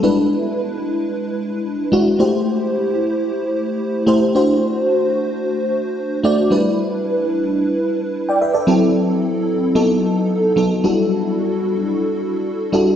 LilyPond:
\new Staff \with { instrumentName = "FM electric piano" } { \time 4/4 \key e \minor \tempo 4 = 111 << { r1 | r1 | r1 | r2. r16 <d'' g''>16 <b' e''>16 <a' d''>16~ |
<a' d''>16 r2. r8. | r1 | } \\ { <gis d' e' b'>4. r2 <gis d' e' fis'>8 | <a e' g' c''>4. r2 <a e' g' c''>8 | <a d' fis' c''>4. r2 <a d' fis' d''>8 | <g d' e' b'>4. r2 r8 |
<fis c' e' a'>4. r8 <fis b dis' a'>4 r8 <fis b dis' a'>8 | <g d' e' fis' a'>4. r2 <g d' e' fis' a'>8 | } >> }